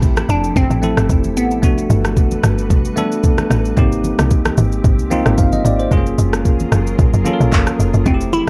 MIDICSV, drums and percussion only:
0, 0, Header, 1, 2, 480
1, 0, Start_track
1, 0, Tempo, 535714
1, 1461, Time_signature, 4, 2, 24, 8
1, 7612, End_track
2, 0, Start_track
2, 0, Title_t, "Drums"
2, 18, Note_on_c, 9, 64, 71
2, 22, Note_on_c, 9, 82, 74
2, 23, Note_on_c, 9, 36, 97
2, 108, Note_off_c, 9, 64, 0
2, 111, Note_off_c, 9, 82, 0
2, 112, Note_off_c, 9, 36, 0
2, 150, Note_on_c, 9, 82, 53
2, 154, Note_on_c, 9, 37, 97
2, 157, Note_on_c, 9, 63, 69
2, 240, Note_off_c, 9, 82, 0
2, 244, Note_off_c, 9, 37, 0
2, 246, Note_off_c, 9, 63, 0
2, 261, Note_on_c, 9, 63, 76
2, 261, Note_on_c, 9, 82, 90
2, 351, Note_off_c, 9, 63, 0
2, 351, Note_off_c, 9, 82, 0
2, 394, Note_on_c, 9, 82, 57
2, 483, Note_off_c, 9, 82, 0
2, 501, Note_on_c, 9, 64, 79
2, 502, Note_on_c, 9, 36, 111
2, 503, Note_on_c, 9, 82, 68
2, 590, Note_off_c, 9, 64, 0
2, 591, Note_off_c, 9, 36, 0
2, 592, Note_off_c, 9, 82, 0
2, 632, Note_on_c, 9, 82, 55
2, 722, Note_off_c, 9, 82, 0
2, 741, Note_on_c, 9, 82, 86
2, 742, Note_on_c, 9, 63, 83
2, 831, Note_off_c, 9, 82, 0
2, 832, Note_off_c, 9, 63, 0
2, 872, Note_on_c, 9, 37, 93
2, 875, Note_on_c, 9, 82, 47
2, 961, Note_off_c, 9, 37, 0
2, 965, Note_off_c, 9, 82, 0
2, 980, Note_on_c, 9, 82, 75
2, 981, Note_on_c, 9, 64, 70
2, 982, Note_on_c, 9, 36, 95
2, 1069, Note_off_c, 9, 82, 0
2, 1070, Note_off_c, 9, 64, 0
2, 1072, Note_off_c, 9, 36, 0
2, 1110, Note_on_c, 9, 82, 51
2, 1115, Note_on_c, 9, 63, 64
2, 1199, Note_off_c, 9, 82, 0
2, 1205, Note_off_c, 9, 63, 0
2, 1226, Note_on_c, 9, 82, 104
2, 1316, Note_off_c, 9, 82, 0
2, 1353, Note_on_c, 9, 82, 48
2, 1442, Note_off_c, 9, 82, 0
2, 1460, Note_on_c, 9, 64, 83
2, 1461, Note_on_c, 9, 36, 110
2, 1461, Note_on_c, 9, 82, 76
2, 1550, Note_off_c, 9, 64, 0
2, 1551, Note_off_c, 9, 36, 0
2, 1551, Note_off_c, 9, 82, 0
2, 1595, Note_on_c, 9, 82, 60
2, 1684, Note_off_c, 9, 82, 0
2, 1701, Note_on_c, 9, 63, 82
2, 1702, Note_on_c, 9, 82, 88
2, 1790, Note_off_c, 9, 63, 0
2, 1792, Note_off_c, 9, 82, 0
2, 1831, Note_on_c, 9, 63, 62
2, 1834, Note_on_c, 9, 37, 88
2, 1835, Note_on_c, 9, 82, 53
2, 1921, Note_off_c, 9, 63, 0
2, 1924, Note_off_c, 9, 37, 0
2, 1924, Note_off_c, 9, 82, 0
2, 1940, Note_on_c, 9, 64, 69
2, 1942, Note_on_c, 9, 82, 73
2, 1943, Note_on_c, 9, 36, 96
2, 2030, Note_off_c, 9, 64, 0
2, 2032, Note_off_c, 9, 36, 0
2, 2032, Note_off_c, 9, 82, 0
2, 2071, Note_on_c, 9, 82, 57
2, 2076, Note_on_c, 9, 63, 72
2, 2160, Note_off_c, 9, 82, 0
2, 2166, Note_off_c, 9, 63, 0
2, 2182, Note_on_c, 9, 37, 91
2, 2182, Note_on_c, 9, 82, 87
2, 2183, Note_on_c, 9, 63, 75
2, 2272, Note_off_c, 9, 37, 0
2, 2272, Note_off_c, 9, 82, 0
2, 2273, Note_off_c, 9, 63, 0
2, 2314, Note_on_c, 9, 82, 56
2, 2404, Note_off_c, 9, 82, 0
2, 2421, Note_on_c, 9, 64, 82
2, 2422, Note_on_c, 9, 36, 109
2, 2422, Note_on_c, 9, 82, 72
2, 2511, Note_off_c, 9, 36, 0
2, 2511, Note_off_c, 9, 64, 0
2, 2512, Note_off_c, 9, 82, 0
2, 2553, Note_on_c, 9, 82, 58
2, 2642, Note_off_c, 9, 82, 0
2, 2660, Note_on_c, 9, 82, 87
2, 2663, Note_on_c, 9, 63, 82
2, 2749, Note_off_c, 9, 82, 0
2, 2753, Note_off_c, 9, 63, 0
2, 2795, Note_on_c, 9, 82, 47
2, 2884, Note_off_c, 9, 82, 0
2, 2898, Note_on_c, 9, 82, 74
2, 2900, Note_on_c, 9, 64, 70
2, 2901, Note_on_c, 9, 36, 95
2, 2988, Note_off_c, 9, 82, 0
2, 2990, Note_off_c, 9, 64, 0
2, 2991, Note_off_c, 9, 36, 0
2, 3027, Note_on_c, 9, 82, 51
2, 3030, Note_on_c, 9, 37, 86
2, 3033, Note_on_c, 9, 63, 63
2, 3117, Note_off_c, 9, 82, 0
2, 3119, Note_off_c, 9, 37, 0
2, 3123, Note_off_c, 9, 63, 0
2, 3141, Note_on_c, 9, 37, 87
2, 3145, Note_on_c, 9, 82, 101
2, 3230, Note_off_c, 9, 37, 0
2, 3234, Note_off_c, 9, 82, 0
2, 3271, Note_on_c, 9, 82, 47
2, 3361, Note_off_c, 9, 82, 0
2, 3376, Note_on_c, 9, 64, 86
2, 3379, Note_on_c, 9, 82, 74
2, 3380, Note_on_c, 9, 36, 105
2, 3466, Note_off_c, 9, 64, 0
2, 3469, Note_off_c, 9, 82, 0
2, 3470, Note_off_c, 9, 36, 0
2, 3514, Note_on_c, 9, 82, 62
2, 3603, Note_off_c, 9, 82, 0
2, 3620, Note_on_c, 9, 63, 80
2, 3621, Note_on_c, 9, 82, 85
2, 3709, Note_off_c, 9, 63, 0
2, 3711, Note_off_c, 9, 82, 0
2, 3749, Note_on_c, 9, 63, 60
2, 3752, Note_on_c, 9, 37, 97
2, 3753, Note_on_c, 9, 82, 55
2, 3839, Note_off_c, 9, 63, 0
2, 3842, Note_off_c, 9, 37, 0
2, 3842, Note_off_c, 9, 82, 0
2, 3857, Note_on_c, 9, 64, 71
2, 3858, Note_on_c, 9, 82, 77
2, 3861, Note_on_c, 9, 36, 98
2, 3947, Note_off_c, 9, 64, 0
2, 3948, Note_off_c, 9, 82, 0
2, 3951, Note_off_c, 9, 36, 0
2, 3987, Note_on_c, 9, 82, 56
2, 3992, Note_on_c, 9, 37, 98
2, 3995, Note_on_c, 9, 63, 74
2, 4077, Note_off_c, 9, 82, 0
2, 4081, Note_off_c, 9, 37, 0
2, 4084, Note_off_c, 9, 63, 0
2, 4099, Note_on_c, 9, 82, 87
2, 4101, Note_on_c, 9, 63, 77
2, 4189, Note_off_c, 9, 82, 0
2, 4190, Note_off_c, 9, 63, 0
2, 4231, Note_on_c, 9, 82, 56
2, 4321, Note_off_c, 9, 82, 0
2, 4339, Note_on_c, 9, 64, 81
2, 4340, Note_on_c, 9, 36, 116
2, 4340, Note_on_c, 9, 82, 70
2, 4428, Note_off_c, 9, 64, 0
2, 4429, Note_off_c, 9, 36, 0
2, 4430, Note_off_c, 9, 82, 0
2, 4470, Note_on_c, 9, 82, 54
2, 4560, Note_off_c, 9, 82, 0
2, 4579, Note_on_c, 9, 82, 88
2, 4581, Note_on_c, 9, 63, 82
2, 4669, Note_off_c, 9, 82, 0
2, 4671, Note_off_c, 9, 63, 0
2, 4711, Note_on_c, 9, 37, 88
2, 4714, Note_on_c, 9, 82, 47
2, 4800, Note_off_c, 9, 37, 0
2, 4804, Note_off_c, 9, 82, 0
2, 4819, Note_on_c, 9, 82, 75
2, 4821, Note_on_c, 9, 36, 96
2, 4821, Note_on_c, 9, 64, 66
2, 4908, Note_off_c, 9, 82, 0
2, 4910, Note_off_c, 9, 36, 0
2, 4910, Note_off_c, 9, 64, 0
2, 4948, Note_on_c, 9, 82, 52
2, 4955, Note_on_c, 9, 63, 62
2, 5038, Note_off_c, 9, 82, 0
2, 5044, Note_off_c, 9, 63, 0
2, 5065, Note_on_c, 9, 82, 102
2, 5155, Note_off_c, 9, 82, 0
2, 5191, Note_on_c, 9, 82, 48
2, 5281, Note_off_c, 9, 82, 0
2, 5298, Note_on_c, 9, 64, 85
2, 5300, Note_on_c, 9, 36, 110
2, 5300, Note_on_c, 9, 82, 72
2, 5387, Note_off_c, 9, 64, 0
2, 5389, Note_off_c, 9, 82, 0
2, 5390, Note_off_c, 9, 36, 0
2, 5433, Note_on_c, 9, 82, 61
2, 5523, Note_off_c, 9, 82, 0
2, 5541, Note_on_c, 9, 63, 80
2, 5541, Note_on_c, 9, 82, 82
2, 5631, Note_off_c, 9, 63, 0
2, 5631, Note_off_c, 9, 82, 0
2, 5672, Note_on_c, 9, 63, 57
2, 5673, Note_on_c, 9, 37, 95
2, 5674, Note_on_c, 9, 82, 53
2, 5762, Note_off_c, 9, 63, 0
2, 5763, Note_off_c, 9, 37, 0
2, 5763, Note_off_c, 9, 82, 0
2, 5781, Note_on_c, 9, 64, 73
2, 5781, Note_on_c, 9, 82, 75
2, 5782, Note_on_c, 9, 36, 96
2, 5870, Note_off_c, 9, 82, 0
2, 5871, Note_off_c, 9, 64, 0
2, 5872, Note_off_c, 9, 36, 0
2, 5910, Note_on_c, 9, 82, 57
2, 5918, Note_on_c, 9, 63, 74
2, 6000, Note_off_c, 9, 82, 0
2, 6007, Note_off_c, 9, 63, 0
2, 6021, Note_on_c, 9, 37, 86
2, 6021, Note_on_c, 9, 82, 91
2, 6022, Note_on_c, 9, 63, 75
2, 6111, Note_off_c, 9, 37, 0
2, 6111, Note_off_c, 9, 63, 0
2, 6111, Note_off_c, 9, 82, 0
2, 6154, Note_on_c, 9, 82, 57
2, 6244, Note_off_c, 9, 82, 0
2, 6260, Note_on_c, 9, 64, 79
2, 6262, Note_on_c, 9, 36, 113
2, 6262, Note_on_c, 9, 82, 69
2, 6350, Note_off_c, 9, 64, 0
2, 6351, Note_off_c, 9, 36, 0
2, 6351, Note_off_c, 9, 82, 0
2, 6394, Note_on_c, 9, 82, 57
2, 6483, Note_off_c, 9, 82, 0
2, 6501, Note_on_c, 9, 82, 86
2, 6502, Note_on_c, 9, 63, 82
2, 6590, Note_off_c, 9, 82, 0
2, 6592, Note_off_c, 9, 63, 0
2, 6636, Note_on_c, 9, 82, 47
2, 6725, Note_off_c, 9, 82, 0
2, 6739, Note_on_c, 9, 82, 75
2, 6740, Note_on_c, 9, 64, 69
2, 6742, Note_on_c, 9, 36, 94
2, 6745, Note_on_c, 9, 39, 88
2, 6829, Note_off_c, 9, 82, 0
2, 6830, Note_off_c, 9, 64, 0
2, 6831, Note_off_c, 9, 36, 0
2, 6834, Note_off_c, 9, 39, 0
2, 6869, Note_on_c, 9, 82, 54
2, 6872, Note_on_c, 9, 37, 86
2, 6875, Note_on_c, 9, 63, 62
2, 6959, Note_off_c, 9, 82, 0
2, 6961, Note_off_c, 9, 37, 0
2, 6965, Note_off_c, 9, 63, 0
2, 6986, Note_on_c, 9, 82, 102
2, 7076, Note_off_c, 9, 82, 0
2, 7111, Note_on_c, 9, 82, 49
2, 7201, Note_off_c, 9, 82, 0
2, 7219, Note_on_c, 9, 82, 70
2, 7221, Note_on_c, 9, 36, 105
2, 7221, Note_on_c, 9, 64, 85
2, 7309, Note_off_c, 9, 82, 0
2, 7310, Note_off_c, 9, 36, 0
2, 7311, Note_off_c, 9, 64, 0
2, 7354, Note_on_c, 9, 82, 62
2, 7443, Note_off_c, 9, 82, 0
2, 7462, Note_on_c, 9, 63, 82
2, 7462, Note_on_c, 9, 82, 81
2, 7552, Note_off_c, 9, 63, 0
2, 7552, Note_off_c, 9, 82, 0
2, 7612, End_track
0, 0, End_of_file